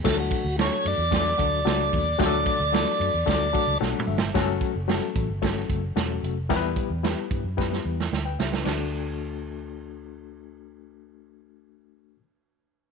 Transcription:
<<
  \new Staff \with { instrumentName = "Tonewheel organ" } { \time 4/4 \key d \major \tempo 4 = 111 a'16 fis'8. cis''8 d''2~ d''8~ | d''2. r4 | r1 | r1 |
r1 | r1 | }
  \new Staff \with { instrumentName = "Reed electric piano" } { \time 4/4 \key d \major << { r1 | r2 r8 a''8 fis''8 e''8 | r1 | r2. r16 <b' g''>16 <g' e''>16 <d' b'>16~ |
<d' b'>16 r2. r8. | r1 | } \\ { <fis a d' fis' a'>8. r16 <fis a d' e' fis' a'>8. r16 <fis a d' fis' a'>8 <fis a d' fis' a'>8 <fis a d' fis' a'>8. r16 | <fis a d' fis' g' a'>8. r16 <fis a d' fis' a'>8. r16 <fis a d' fis' a'>8 <fis a d' fis' a'>8 <fis a d' fis' a'>8. r16 | <fis a cis' fis' gis' a'>8. r16 <fis a cis' fis' g' a'>8. r16 <fis a cis' fis' a'>8. r16 <fis a cis' fis' a'>8. r16 | <g b e' g' bes' b'>8. r16 <g b e' fis' g' b'>8. r16 <g b e' g' b'>8. r4 r16 |
<a d' fis' a'>1~ | <a d' fis' a'>1 | } >> }
  \new Staff \with { instrumentName = "Fingered electric bass" } { \clef bass \time 4/4 \key d \major d,8 r16 d,8 r16 fis,16 e,8. d,8 cis,8 ees,8 | d,8 r16 d,8 r16 fis,16 e,16 d,8 r16 cis,16 b,,16 r16 g,,8 | fis,,8 r16 fis,,8 r16 a,,16 g,,8. fis,,8 e,,8 f,,8 | e,8 r16 e,8 r16 g,16 fis,8. e,8 d,8 cis,8 |
d,1~ | d,1 | }
  \new DrumStaff \with { instrumentName = "Drums" } \drummode { \time 4/4 <bd cymr sn>8 <bd cymr>8 <cymr sn>16 cymr16 cymr8 <bd cymr sn>16 sn16 <bd cymr>8 <cymr sn>8 <bd cymr>8 | <bd cymr sn>8 <bd cymr>8 <cymr sn>16 cymr16 cymr8 <bd cymr sn>8 <bd cymr>8 \tuplet 3/2 { sn8 toml8 sn8 } | <hh bd sn>8 <hh bd>8 <hh sn>16 hh16 <hh bd>8 <hh bd sn>16 sn16 <hh bd>8 <hh sn>8 hh8 | <hh bd sn>8 <hh bd>8 <hh sn>8 <hh bd>8 <bd sn>16 sn8 sn16 sn8 sn16 sn16 |
<cymc sn>4 r4 r4 r4 | r4 r4 r4 r4 | }
>>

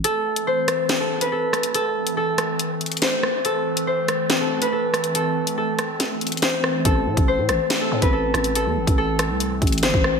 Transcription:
<<
  \new Staff \with { instrumentName = "Harp" } { \time 4/4 \key a \minor \tempo 4 = 141 a'4 c''4~ c''16 a'8 b'16 a'4 | a'4 a'2 c''4 | a'4 c''4~ c''16 a'8 b'16 a'4 | a'4 a'2 c''4 |
a'4 c''4~ c''16 a'8 b'16 a'4 | a'4 a'2 c''4 | }
  \new Staff \with { instrumentName = "Analog synth pad" } { \time 4/4 \key a \minor <e a c'>1~ | <e a c'>1~ | <e a c'>1~ | <e a c'>1~ |
<e a c'>1~ | <e a c'>1 | }
  \new Staff \with { instrumentName = "808-style bass" } { \clef bass \time 4/4 \key a \minor r1 | r1 | r1 | r1 |
a,,8 a,16 a,,8 a,16 a,,16 r8. a,16 a,,8. a,,8~ | a,,16 e,16 a,,16 a,,4 c,8. a,,8 g,,16 a,,8. | }
  \new DrumStaff \with { instrumentName = "Drums" } \drummode { \time 4/4 hh8. hh16 r8 <hh ss>8 <hh sn>8. hh16 r8 <hh ss>16 hh16 | hh8. hh16 r8 <hh ss>8 hh8 hh32 hh32 hh32 hh32 <hh sn>8 ss8 | hh8. hh16 r8 <hh ss>8 <hh sn>8. hh16 r8 <hh ss>16 hh16 | hh8. hh16 r8 <hh ss>8 <hh sn>8 hh32 hh32 hh32 hh32 <hh sn>8 ss8 |
<hh bd>8. <hh bd>16 r8 <hh ss>8 <hh sn>8. <hh bd>16 r8 <hh ss>16 hh16 | hh8. <hh bd>16 r8 <hh ss>8 hh8 <hh bd>32 hh32 hh32 hh32 <hh sn>16 bd16 ss8 | }
>>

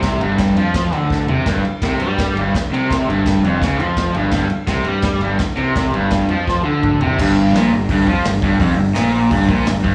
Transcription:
<<
  \new Staff \with { instrumentName = "Overdriven electric guitar" } { \clef bass \time 4/4 \key f \lydian \tempo 4 = 168 c8 g,4 f4 d4 c8 | g,8 r8 c8 g4 g,8 r8 c8~ | c8 g,4 f,8 cis8 f4 g,8 | g,8 r8 c8 g4 g,8 r8 c8~ |
c8 g,4 f4 d4 c8 | g,4 bes,8 g,8 g,8 f8 g,8 g,8 | f,8 g,8 bes,4 g,8 bes,8 g,8 g,8 | }
  \new Staff \with { instrumentName = "Picked electric bass" } { \clef bass \time 4/4 \key f \lydian c,8 g,,4 f,4 d,4 c,8 | g,,8 r8 c,8 g,4 g,,8 r8 c,8~ | c,8 g,,4 f,,8 cis,8 f,4 g,,8 | g,,8 r8 c,8 g,4 g,,8 r8 c,8~ |
c,8 g,,4 f,4 d,4 c,8 | g,,4 bes,,8 g,,8 g,,8 f,8 g,,8 g,,8 | f,,8 g,,8 bes,,4 g,,8 bes,,8 g,,8 g,,8 | }
  \new DrumStaff \with { instrumentName = "Drums" } \drummode { \time 4/4 <bd cymr sn>8 cymr8 <bd cymr sn>8 cymr8 <bd cymr sn>8 cymr8 <bd sn>8 tomfh8 | <bd cymr sn>8 cymr8 <bd cymr sn>8 cymr8 <bd cymr sn>8 cymr8 <bd cymr sn>8 cymr8 | <bd cymr sn>8 cymr8 <bd cymr sn>8 cymr8 <bd cymr sn>8 cymr8 <bd cymr sn>8 cymr8 | <bd cymr sn>8 cymr8 <bd cymr sn>8 cymr8 <bd cymr sn>8 cymr8 <bd cymr sn>8 cymr8 |
<bd cymr sn>8 cymr8 <bd cymr sn>8 cymr8 <bd sn>4 <bd toml>8 tomfh8 | <cymc bd>4 <hho sn>4 <hho bd>8 bd8 <hho sn>8 bd8 | <hho bd>4 <hho sn>4 <hho bd>8 bd8 <hho sn>8 bd8 | }
>>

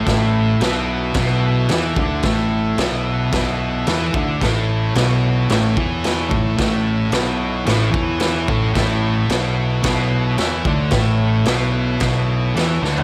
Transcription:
<<
  \new Staff \with { instrumentName = "Transistor combo organ" } { \time 4/4 \key a \major \tempo 4 = 110 <e' a' e''>1~ | <e' a' e''>1 | <e' a' cis''>1~ | <e' a' cis''>1 |
<e' a' cis''>1~ | <e' a' cis''>1 | }
  \new Staff \with { instrumentName = "Distorted electric guitar" } { \clef bass \time 4/4 \key a \major <a, a>4 <b, b>4 <b, b>4 <e e'>8 <d d'>8 | <a, a>4 <b, b>4 <b, b>4 <e e'>8 <d d'>8 | <a, a>4 <b, b>4 <a, a>8 <e e'>4 <a, a>8 | <a, a>4 <b, b>4 <a, a>8 <e e'>4 <a, a>8 |
<a, a>4 <b, b>4 <b, b>4 <e e'>8 <d d'>8 | <a, a>4 <b, b>4 <b, b>4 <e e'>8 <d d'>8 | }
  \new Staff \with { instrumentName = "Fingered electric bass" } { \clef bass \time 4/4 \key a \major a,,4 b,,4 b,,4 e,8 d,8 | a,,4 b,,4 b,,4 e,8 d,8 | a,,4 b,,4 a,,8 e,4 a,,8 | a,,4 b,,4 a,,8 e,4 a,,8 |
a,,4 b,,4 b,,4 e,8 d,8 | a,,4 b,,4 b,,4 e,8 d,8 | }
  \new DrumStaff \with { instrumentName = "Drums" } \drummode { \time 4/4 <cymc bd sn>4 <cymc sn>4 <cymc bd sn>4 <cymc sn>8 bd8 | <cymc bd sn>4 <cymc sn>4 <cymc bd sn>4 <cymc sn>8 bd8 | <cymc bd sn>4 <cymc sn>4 <cymc sn>8 bd8 <cymc sn>8 bd8 | <cymc bd sn>4 <cymc sn>4 <cymc sn>8 bd8 <cymc sn>8 bd8 |
<cymc bd sn>4 <cymc sn>4 <cymc bd sn>4 <cymc sn>8 bd8 | <cymc bd sn>4 <cymc sn>4 <cymc bd sn>4 <cymc sn>8 sn16 tomfh16 | }
>>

